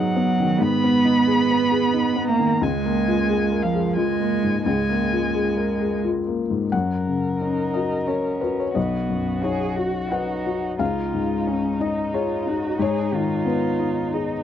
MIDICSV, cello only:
0, 0, Header, 1, 2, 480
1, 0, Start_track
1, 0, Key_signature, 6, "major"
1, 0, Tempo, 672646
1, 427, Time_signature, 3, 2, 24, 8
1, 2341, Tempo, 689655
1, 4741, Tempo, 678733
1, 7141, Tempo, 668151
1, 10236, End_track
2, 0, Start_track
2, 0, Title_t, "Cello"
2, 0, Program_c, 0, 42
2, 0, Note_on_c, 0, 54, 84
2, 431, Note_on_c, 0, 59, 104
2, 442, Note_off_c, 0, 54, 0
2, 1631, Note_on_c, 0, 58, 94
2, 1641, Note_off_c, 0, 59, 0
2, 1874, Note_on_c, 0, 56, 84
2, 1885, Note_off_c, 0, 58, 0
2, 2577, Note_on_c, 0, 53, 75
2, 2588, Note_off_c, 0, 56, 0
2, 2813, Note_on_c, 0, 56, 86
2, 2823, Note_off_c, 0, 53, 0
2, 3281, Note_off_c, 0, 56, 0
2, 3285, Note_on_c, 0, 56, 78
2, 4237, Note_off_c, 0, 56, 0
2, 5212, Note_on_c, 0, 63, 62
2, 5692, Note_on_c, 0, 61, 49
2, 5703, Note_off_c, 0, 63, 0
2, 6173, Note_off_c, 0, 61, 0
2, 6185, Note_on_c, 0, 59, 57
2, 6652, Note_on_c, 0, 68, 65
2, 6663, Note_off_c, 0, 59, 0
2, 6886, Note_on_c, 0, 66, 51
2, 6897, Note_off_c, 0, 68, 0
2, 7137, Note_on_c, 0, 63, 54
2, 7148, Note_off_c, 0, 66, 0
2, 7617, Note_off_c, 0, 63, 0
2, 7622, Note_on_c, 0, 65, 61
2, 8109, Note_on_c, 0, 61, 54
2, 8120, Note_off_c, 0, 65, 0
2, 8348, Note_on_c, 0, 63, 47
2, 8359, Note_off_c, 0, 61, 0
2, 8590, Note_on_c, 0, 65, 54
2, 8601, Note_off_c, 0, 63, 0
2, 8833, Note_on_c, 0, 66, 59
2, 8844, Note_off_c, 0, 65, 0
2, 9063, Note_on_c, 0, 68, 60
2, 9074, Note_off_c, 0, 66, 0
2, 9310, Note_on_c, 0, 65, 67
2, 9321, Note_off_c, 0, 68, 0
2, 10023, Note_on_c, 0, 63, 51
2, 10034, Note_off_c, 0, 65, 0
2, 10236, Note_off_c, 0, 63, 0
2, 10236, End_track
0, 0, End_of_file